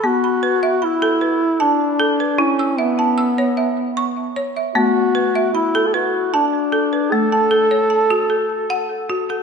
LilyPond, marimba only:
<<
  \new Staff \with { instrumentName = "Marimba" } { \time 3/4 \key b \dorian \tempo 4 = 76 << { b''16 b''16 b'8 b''8 b'8. r8 b'16~ | b'16 e'''16 e''8 e'''8 e''8. r8 e''16~ | e''16 r16 b'8 b''8 b'8. r8 b'16~ | b'16 a''16 a'8 a''8 a'8. r8 a'16 | } \\ { b8 r16 e''8 a'8 r16 a''8 a'8 | e'8 r16 a''8 cis''8 r16 cis'''8 cis''8 | b8 r16 e''8 a'8 r16 a''8 a'8 | r8. cis''8 fis'8 r16 fis''8 fis'8 | } >> }
  \new Staff \with { instrumentName = "Marimba" } { \time 3/4 \key b \dorian r2. | r2. | a2. | a2. | }
>>